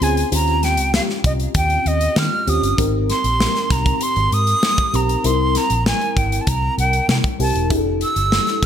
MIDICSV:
0, 0, Header, 1, 5, 480
1, 0, Start_track
1, 0, Tempo, 615385
1, 251, Time_signature, 4, 2, 24, 8
1, 6754, End_track
2, 0, Start_track
2, 0, Title_t, "Flute"
2, 0, Program_c, 0, 73
2, 25, Note_on_c, 0, 80, 91
2, 257, Note_off_c, 0, 80, 0
2, 264, Note_on_c, 0, 82, 93
2, 500, Note_on_c, 0, 79, 83
2, 512, Note_off_c, 0, 82, 0
2, 735, Note_off_c, 0, 79, 0
2, 742, Note_on_c, 0, 77, 92
2, 795, Note_off_c, 0, 77, 0
2, 982, Note_on_c, 0, 75, 81
2, 1035, Note_off_c, 0, 75, 0
2, 1220, Note_on_c, 0, 79, 87
2, 1461, Note_on_c, 0, 75, 90
2, 1473, Note_off_c, 0, 79, 0
2, 1703, Note_on_c, 0, 89, 91
2, 1715, Note_off_c, 0, 75, 0
2, 1946, Note_on_c, 0, 87, 87
2, 1957, Note_off_c, 0, 89, 0
2, 2205, Note_off_c, 0, 87, 0
2, 2421, Note_on_c, 0, 84, 93
2, 2900, Note_on_c, 0, 82, 88
2, 2912, Note_off_c, 0, 84, 0
2, 3142, Note_on_c, 0, 84, 96
2, 3154, Note_off_c, 0, 82, 0
2, 3381, Note_on_c, 0, 87, 111
2, 3393, Note_off_c, 0, 84, 0
2, 3865, Note_on_c, 0, 82, 89
2, 3877, Note_off_c, 0, 87, 0
2, 4103, Note_on_c, 0, 84, 95
2, 4114, Note_off_c, 0, 82, 0
2, 4346, Note_on_c, 0, 82, 96
2, 4358, Note_off_c, 0, 84, 0
2, 4577, Note_off_c, 0, 82, 0
2, 4584, Note_on_c, 0, 80, 94
2, 4820, Note_on_c, 0, 79, 83
2, 4831, Note_off_c, 0, 80, 0
2, 5001, Note_on_c, 0, 81, 64
2, 5013, Note_off_c, 0, 79, 0
2, 5060, Note_on_c, 0, 82, 94
2, 5072, Note_off_c, 0, 81, 0
2, 5294, Note_off_c, 0, 82, 0
2, 5300, Note_on_c, 0, 79, 94
2, 5517, Note_off_c, 0, 79, 0
2, 5541, Note_on_c, 0, 79, 75
2, 5594, Note_off_c, 0, 79, 0
2, 5780, Note_on_c, 0, 81, 83
2, 6024, Note_off_c, 0, 81, 0
2, 6266, Note_on_c, 0, 88, 103
2, 6753, Note_off_c, 0, 88, 0
2, 6754, End_track
3, 0, Start_track
3, 0, Title_t, "FM electric piano"
3, 0, Program_c, 1, 5
3, 0, Control_c, 1, 64, 127
3, 5, Note_on_c, 1, 60, 70
3, 8, Note_on_c, 1, 61, 57
3, 11, Note_on_c, 1, 65, 59
3, 15, Note_on_c, 1, 68, 73
3, 209, Note_off_c, 1, 60, 0
3, 211, Note_off_c, 1, 61, 0
3, 212, Note_off_c, 1, 65, 0
3, 214, Note_off_c, 1, 68, 0
3, 243, Note_on_c, 1, 60, 68
3, 248, Note_on_c, 1, 61, 64
3, 250, Note_on_c, 1, 65, 66
3, 253, Note_on_c, 1, 67, 81
3, 262, Control_c, 1, 64, 0
3, 412, Control_c, 1, 64, 127
3, 1051, Note_off_c, 1, 60, 0
3, 1054, Note_off_c, 1, 61, 0
3, 1055, Note_off_c, 1, 65, 0
3, 1056, Note_off_c, 1, 67, 0
3, 1924, Note_on_c, 1, 60, 60
3, 1927, Note_on_c, 1, 61, 66
3, 1930, Note_on_c, 1, 65, 56
3, 1932, Note_on_c, 1, 67, 76
3, 2128, Note_off_c, 1, 60, 0
3, 2129, Note_off_c, 1, 61, 0
3, 2130, Note_off_c, 1, 65, 0
3, 2132, Note_off_c, 1, 67, 0
3, 2164, Note_on_c, 1, 60, 68
3, 2168, Note_on_c, 1, 63, 67
3, 2171, Note_on_c, 1, 67, 69
3, 2174, Note_on_c, 1, 70, 81
3, 2180, Control_c, 1, 64, 0
3, 2311, Control_c, 1, 64, 127
3, 2971, Note_off_c, 1, 60, 0
3, 2973, Note_off_c, 1, 63, 0
3, 2975, Note_off_c, 1, 67, 0
3, 2976, Note_off_c, 1, 70, 0
3, 3847, Note_on_c, 1, 60, 68
3, 3851, Note_on_c, 1, 63, 55
3, 3853, Note_on_c, 1, 67, 61
3, 3856, Note_on_c, 1, 70, 72
3, 4049, Note_off_c, 1, 60, 0
3, 4051, Note_off_c, 1, 63, 0
3, 4052, Note_off_c, 1, 67, 0
3, 4053, Note_off_c, 1, 70, 0
3, 4086, Note_on_c, 1, 60, 74
3, 4089, Note_on_c, 1, 64, 64
3, 4093, Note_on_c, 1, 55, 69
3, 4097, Note_on_c, 1, 70, 80
3, 4098, Control_c, 1, 64, 0
3, 4245, Control_c, 1, 64, 127
3, 4893, Note_off_c, 1, 60, 0
3, 4894, Note_off_c, 1, 64, 0
3, 4896, Note_off_c, 1, 55, 0
3, 4898, Note_off_c, 1, 70, 0
3, 5766, Note_on_c, 1, 60, 62
3, 5768, Note_on_c, 1, 64, 58
3, 5772, Note_on_c, 1, 67, 60
3, 5776, Note_on_c, 1, 70, 70
3, 5968, Note_off_c, 1, 60, 0
3, 5970, Note_off_c, 1, 64, 0
3, 5971, Note_off_c, 1, 67, 0
3, 5974, Note_off_c, 1, 70, 0
3, 6008, Note_on_c, 1, 62, 67
3, 6009, Note_on_c, 1, 64, 66
3, 6012, Note_on_c, 1, 67, 61
3, 6016, Note_on_c, 1, 68, 62
3, 6018, Control_c, 1, 64, 0
3, 6063, Note_off_c, 1, 68, 0
3, 6067, Note_on_c, 1, 69, 79
3, 6166, Control_c, 1, 64, 127
3, 6754, Note_off_c, 1, 62, 0
3, 6754, Note_off_c, 1, 64, 0
3, 6754, Note_off_c, 1, 67, 0
3, 6754, Note_off_c, 1, 69, 0
3, 6754, End_track
4, 0, Start_track
4, 0, Title_t, "Fingered electric bass"
4, 0, Program_c, 2, 33
4, 9, Note_on_c, 2, 38, 80
4, 175, Note_off_c, 2, 38, 0
4, 249, Note_on_c, 2, 39, 97
4, 605, Note_off_c, 2, 39, 0
4, 605, Note_on_c, 2, 37, 80
4, 772, Note_off_c, 2, 37, 0
4, 970, Note_on_c, 2, 36, 77
4, 1134, Note_off_c, 2, 36, 0
4, 1207, Note_on_c, 2, 39, 75
4, 1373, Note_off_c, 2, 39, 0
4, 1447, Note_on_c, 2, 39, 86
4, 1612, Note_off_c, 2, 39, 0
4, 1687, Note_on_c, 2, 51, 89
4, 1770, Note_off_c, 2, 51, 0
4, 1929, Note_on_c, 2, 39, 81
4, 2011, Note_off_c, 2, 39, 0
4, 2046, Note_on_c, 2, 31, 80
4, 2129, Note_off_c, 2, 31, 0
4, 2171, Note_on_c, 2, 32, 103
4, 2417, Note_off_c, 2, 32, 0
4, 2527, Note_on_c, 2, 34, 77
4, 2692, Note_off_c, 2, 34, 0
4, 2890, Note_on_c, 2, 36, 80
4, 3054, Note_off_c, 2, 36, 0
4, 3249, Note_on_c, 2, 32, 107
4, 3331, Note_off_c, 2, 32, 0
4, 3368, Note_on_c, 2, 44, 92
4, 3532, Note_off_c, 2, 44, 0
4, 3850, Note_on_c, 2, 35, 82
4, 4014, Note_off_c, 2, 35, 0
4, 4089, Note_on_c, 2, 36, 92
4, 4336, Note_off_c, 2, 36, 0
4, 4448, Note_on_c, 2, 34, 72
4, 4613, Note_off_c, 2, 34, 0
4, 4809, Note_on_c, 2, 32, 83
4, 4974, Note_off_c, 2, 32, 0
4, 5047, Note_on_c, 2, 36, 75
4, 5212, Note_off_c, 2, 36, 0
4, 5288, Note_on_c, 2, 36, 83
4, 5453, Note_off_c, 2, 36, 0
4, 5525, Note_on_c, 2, 48, 92
4, 5609, Note_off_c, 2, 48, 0
4, 5768, Note_on_c, 2, 36, 84
4, 5851, Note_off_c, 2, 36, 0
4, 5887, Note_on_c, 2, 28, 79
4, 6008, Note_off_c, 2, 28, 0
4, 6008, Note_on_c, 2, 29, 97
4, 6256, Note_off_c, 2, 29, 0
4, 6366, Note_on_c, 2, 31, 75
4, 6531, Note_off_c, 2, 31, 0
4, 6727, Note_on_c, 2, 33, 75
4, 6754, Note_off_c, 2, 33, 0
4, 6754, End_track
5, 0, Start_track
5, 0, Title_t, "Drums"
5, 14, Note_on_c, 9, 42, 66
5, 92, Note_off_c, 9, 42, 0
5, 134, Note_on_c, 9, 42, 49
5, 212, Note_off_c, 9, 42, 0
5, 251, Note_on_c, 9, 42, 81
5, 329, Note_off_c, 9, 42, 0
5, 371, Note_on_c, 9, 42, 29
5, 449, Note_off_c, 9, 42, 0
5, 491, Note_on_c, 9, 42, 62
5, 495, Note_on_c, 9, 38, 34
5, 569, Note_off_c, 9, 42, 0
5, 573, Note_off_c, 9, 38, 0
5, 603, Note_on_c, 9, 42, 55
5, 681, Note_off_c, 9, 42, 0
5, 732, Note_on_c, 9, 38, 108
5, 810, Note_off_c, 9, 38, 0
5, 853, Note_on_c, 9, 38, 30
5, 931, Note_off_c, 9, 38, 0
5, 969, Note_on_c, 9, 36, 85
5, 972, Note_on_c, 9, 42, 60
5, 1047, Note_off_c, 9, 36, 0
5, 1050, Note_off_c, 9, 42, 0
5, 1089, Note_on_c, 9, 42, 43
5, 1167, Note_off_c, 9, 42, 0
5, 1205, Note_on_c, 9, 42, 80
5, 1208, Note_on_c, 9, 36, 84
5, 1283, Note_off_c, 9, 42, 0
5, 1286, Note_off_c, 9, 36, 0
5, 1325, Note_on_c, 9, 42, 35
5, 1403, Note_off_c, 9, 42, 0
5, 1451, Note_on_c, 9, 42, 52
5, 1529, Note_off_c, 9, 42, 0
5, 1566, Note_on_c, 9, 42, 50
5, 1644, Note_off_c, 9, 42, 0
5, 1687, Note_on_c, 9, 38, 118
5, 1765, Note_off_c, 9, 38, 0
5, 1930, Note_on_c, 9, 42, 70
5, 2008, Note_off_c, 9, 42, 0
5, 2054, Note_on_c, 9, 42, 49
5, 2132, Note_off_c, 9, 42, 0
5, 2171, Note_on_c, 9, 36, 109
5, 2174, Note_on_c, 9, 42, 90
5, 2249, Note_off_c, 9, 36, 0
5, 2252, Note_off_c, 9, 42, 0
5, 2415, Note_on_c, 9, 42, 74
5, 2419, Note_on_c, 9, 38, 33
5, 2493, Note_off_c, 9, 42, 0
5, 2497, Note_off_c, 9, 38, 0
5, 2529, Note_on_c, 9, 42, 47
5, 2607, Note_off_c, 9, 42, 0
5, 2656, Note_on_c, 9, 38, 102
5, 2734, Note_off_c, 9, 38, 0
5, 2772, Note_on_c, 9, 42, 30
5, 2774, Note_on_c, 9, 38, 31
5, 2850, Note_off_c, 9, 42, 0
5, 2852, Note_off_c, 9, 38, 0
5, 2890, Note_on_c, 9, 36, 84
5, 2890, Note_on_c, 9, 38, 32
5, 2890, Note_on_c, 9, 42, 64
5, 2968, Note_off_c, 9, 36, 0
5, 2968, Note_off_c, 9, 38, 0
5, 2968, Note_off_c, 9, 42, 0
5, 3009, Note_on_c, 9, 36, 82
5, 3009, Note_on_c, 9, 42, 47
5, 3087, Note_off_c, 9, 36, 0
5, 3087, Note_off_c, 9, 42, 0
5, 3125, Note_on_c, 9, 42, 80
5, 3203, Note_off_c, 9, 42, 0
5, 3245, Note_on_c, 9, 42, 33
5, 3323, Note_off_c, 9, 42, 0
5, 3372, Note_on_c, 9, 42, 52
5, 3450, Note_off_c, 9, 42, 0
5, 3487, Note_on_c, 9, 42, 50
5, 3565, Note_off_c, 9, 42, 0
5, 3611, Note_on_c, 9, 38, 115
5, 3689, Note_off_c, 9, 38, 0
5, 3729, Note_on_c, 9, 36, 91
5, 3730, Note_on_c, 9, 42, 33
5, 3807, Note_off_c, 9, 36, 0
5, 3808, Note_off_c, 9, 42, 0
5, 3852, Note_on_c, 9, 42, 66
5, 3930, Note_off_c, 9, 42, 0
5, 3972, Note_on_c, 9, 42, 46
5, 4050, Note_off_c, 9, 42, 0
5, 4090, Note_on_c, 9, 42, 83
5, 4168, Note_off_c, 9, 42, 0
5, 4329, Note_on_c, 9, 42, 63
5, 4333, Note_on_c, 9, 38, 31
5, 4407, Note_off_c, 9, 42, 0
5, 4411, Note_off_c, 9, 38, 0
5, 4445, Note_on_c, 9, 42, 50
5, 4523, Note_off_c, 9, 42, 0
5, 4573, Note_on_c, 9, 38, 102
5, 4651, Note_off_c, 9, 38, 0
5, 4690, Note_on_c, 9, 42, 31
5, 4768, Note_off_c, 9, 42, 0
5, 4810, Note_on_c, 9, 36, 80
5, 4813, Note_on_c, 9, 42, 61
5, 4888, Note_off_c, 9, 36, 0
5, 4891, Note_off_c, 9, 42, 0
5, 4931, Note_on_c, 9, 42, 48
5, 5009, Note_off_c, 9, 42, 0
5, 5047, Note_on_c, 9, 42, 79
5, 5048, Note_on_c, 9, 36, 79
5, 5125, Note_off_c, 9, 42, 0
5, 5126, Note_off_c, 9, 36, 0
5, 5293, Note_on_c, 9, 42, 54
5, 5371, Note_off_c, 9, 42, 0
5, 5406, Note_on_c, 9, 42, 46
5, 5484, Note_off_c, 9, 42, 0
5, 5530, Note_on_c, 9, 38, 118
5, 5608, Note_off_c, 9, 38, 0
5, 5648, Note_on_c, 9, 36, 88
5, 5648, Note_on_c, 9, 42, 34
5, 5726, Note_off_c, 9, 36, 0
5, 5726, Note_off_c, 9, 42, 0
5, 5771, Note_on_c, 9, 46, 68
5, 5849, Note_off_c, 9, 46, 0
5, 5893, Note_on_c, 9, 42, 49
5, 5971, Note_off_c, 9, 42, 0
5, 6009, Note_on_c, 9, 36, 108
5, 6009, Note_on_c, 9, 42, 83
5, 6087, Note_off_c, 9, 36, 0
5, 6087, Note_off_c, 9, 42, 0
5, 6247, Note_on_c, 9, 42, 71
5, 6325, Note_off_c, 9, 42, 0
5, 6366, Note_on_c, 9, 42, 51
5, 6444, Note_off_c, 9, 42, 0
5, 6491, Note_on_c, 9, 38, 101
5, 6569, Note_off_c, 9, 38, 0
5, 6607, Note_on_c, 9, 42, 33
5, 6608, Note_on_c, 9, 38, 32
5, 6685, Note_off_c, 9, 42, 0
5, 6686, Note_off_c, 9, 38, 0
5, 6727, Note_on_c, 9, 38, 34
5, 6728, Note_on_c, 9, 36, 83
5, 6728, Note_on_c, 9, 42, 67
5, 6754, Note_off_c, 9, 36, 0
5, 6754, Note_off_c, 9, 38, 0
5, 6754, Note_off_c, 9, 42, 0
5, 6754, End_track
0, 0, End_of_file